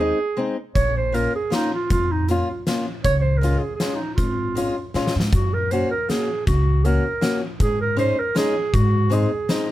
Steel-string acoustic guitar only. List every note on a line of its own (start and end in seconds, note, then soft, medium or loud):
0.00 0.17 G#3 medium
0.00 0.17 C4 soft
0.00 0.18 D#4 medium
0.37 0.55 G#3 medium
0.37 0.56 C4 medium
0.37 0.56 D#4 medium
1.12 1.31 A#3 soft
1.12 1.32 C#4 soft
1.12 1.32 F4 medium
1.50 1.69 A#3 soft
1.50 1.70 C#4 soft
1.50 1.70 F4 medium
2.29 2.47 A#3 soft
2.29 2.47 C#4 medium
2.29 2.48 F4 medium
2.67 2.85 A#3 medium
2.67 2.85 C#4 soft
2.67 2.86 F4 medium
3.41 3.60 G#3 medium
3.41 3.61 C#4 soft
3.41 3.61 F4 medium
3.80 3.98 G#3 soft
3.80 3.98 C#4 soft
3.80 3.99 F4 medium
4.55 4.74 G#3 medium
4.55 4.75 C#4 soft
4.55 4.75 F4 medium
4.94 5.13 G#3 medium
4.94 5.13 C#4 medium
4.94 5.13 F4 medium
5.71 5.89 A#3 medium
5.71 5.90 C#4 medium
5.71 5.90 F#4 medium
6.09 6.27 A#3 soft
6.09 6.27 C#4 soft
6.09 6.28 F#4 soft
6.85 7.03 A#3 medium
6.85 7.03 C#4 medium
6.85 7.03 F#4 medium
7.21 7.40 A#3 medium
7.21 7.40 C#4 soft
7.21 7.41 F#4 medium
7.97 8.15 G#3 medium
7.97 8.15 C#4 medium
7.97 8.16 D#4 medium
8.35 8.53 G#3 medium
8.35 8.54 C#4 medium
8.35 8.54 D#4 medium
9.10 9.29 G#3 medium
9.10 9.29 C4 medium
9.10 9.30 D#4 medium
9.49 9.67 G#3 soft
9.49 9.68 C4 soft
9.49 9.68 D#4 medium